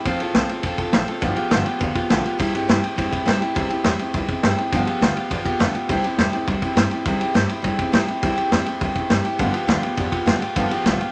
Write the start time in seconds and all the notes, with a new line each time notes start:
0.05 F1 F3 C4 F4 A4, kick, ride
0.19 C2 F4 A4, ride
0.24 C4
0.33 C2 F3 C4 F4, snare, ride
0.38 A4
0.49 C4 F4 A4, muted upright bass stroke, ride
0.63 C2 F3 C4 F4 A4, kick, ride
0.78 C2 C4 F4 A4, kick, ride
0.92 A1 F3 C4 F4 A4, snare, ride
1.08 C4 F4 A4, ride
1.21 G1 G2 D3 F3 B3 F4 G4, kick, ride
1.36 F3 B3 F4 G4, ride
1.50 G1 G2 D3 F3 B3 F4 G4, snare, ride
1.65 F3 B3 F4 G4, ride
1.79 D2 F3 B3 F4 G4, kick, ride
1.95 F3 B3 F4 G4, muted upright bass stroke, kick, ride
2.09 B1 G2 D3 F3 B3 F4 G4, snare, ride
2.24 F3 B3 F4 G4, muted upright bass stroke, ride
2.39 C2 C3 G3 C4 E4 G4, kick, ride
2.53 G2 C4 E4 G4, ride
2.68 G2 C3 G3 C4 E4 G4, snare, ride
2.82 C4 E4 G4, ride
2.96 G2 G3 C4 E4 G4, kick, ride
3.10 G2 C4 E4 G4, kick, ride
3.25 A2 C3 G3 C4 E4 G4, snare, ride
3.40 C4 E4 G4, muted upright bass stroke, ride
3.55 C2 C3 G3 C4 E4 G4, kick, ride
3.70 C4 E4 G4, muted upright bass stroke, ride
3.84 E2 C3 G3 C4 E4 G4, snare, ride
3.99 C4 E4 G4, muted upright bass stroke, ride
4.13 C2 G3 C4 E4 G4, kick, ride
4.28 C4 E4 G4, muted upright bass stroke, kick, ride
4.43 G2 C3 G3 C4 E4 G4, snare, ride
4.57 C4 E4 G4, ride
4.72 G1 G2 D3 F3 B3 F4 G4, kick, ride
4.86 F3 B3 F4 G4, muted upright bass stroke, ride
5.01 D2 G2 D3 F3 B3 F4 G4, snare, ride
5.15 F3 B3 F4 G4, muted upright bass stroke, ride
5.30 E2 F3 B3 F4 G4, kick, ride
5.45 F3 B3 F4 G4, kick, ride
5.59 F2 G2 D3 F3 B3 F4 G4, snare, ride
5.74 F3 B3 F4 G4, muted upright bass stroke, ride
5.89 C2 C3 G3 C4 E4 G4, kick, ride
6.03 C4 E4 G4, muted upright bass stroke, ride
6.18 E2 C3 G3 C4 E4 G4, snare, ride
6.33 C4 E4 G4, ride
6.47 C2 G3 C4 E4 G4, kick, ride
6.61 C4 E4 G4, kick, ride
6.75 G2 C3 G3 C4 E4 G4, snare, ride
6.90 C4 E4 G4, muted upright bass stroke, ride
7.05 C2 C3 G3 C4 E4 G4, kick, ride
7.19 C4 E4 G4, muted upright bass stroke, ride
7.34 G2 C3 G3 C4 E4 G4, snare, ride
7.49 C4 E4 G4, ride
7.62 A2 G3 C4 E4 G4, kick, ride
7.78 C4 E4 G4, kick, ride
7.92 A2 C3 G3 C4 E4 G4, snare, ride
8.07 C4 E4 G4, muted upright bass stroke, ride
8.22 C2 C3 G3 C4 E4 G4, kick, ride
8.36 C4 E4 G4, muted upright bass stroke, ride
8.51 E2 C3 G3 C4 E4 G4, snare, ride
8.65 C4 E4 G4, ride
8.81 C2 G3 C4 E4 G4, kick, ride
8.95 C4 E4 G4, muted upright bass stroke, kick, ride
9.10 G2 C3 G3 C4 E4 G4, snare, ride
9.24 C4 E4 G4, ride
9.39 G1 G2 D3 F3 B3 F4 G4, kick, ride
9.53 F3 B3 F4 G4, muted upright bass stroke, ride
9.67 D2 G2 D3 F3 B3 F4 G4, snare, ride
9.82 F3 B3 F4 G4, ride
9.97 E2 F3 B3 F4 G4, kick, ride
10.11 F3 B3 F4 G4, kick, ride
10.26 F2 G2 D3 F3 B3 F4 G4, snare, ride
10.41 F3 B3 F4 G4, ride
10.56 G1 G2 D3 F3 B3 F4 G4, kick, ride
10.70 B3 F4 G4, muted upright bass stroke, ride
10.75 F3
10.84 B1 G2 D3 F3 B3 F4 G4, snare, ride
10.99 B3 F4 G4, muted upright bass stroke, ride
11.03 F3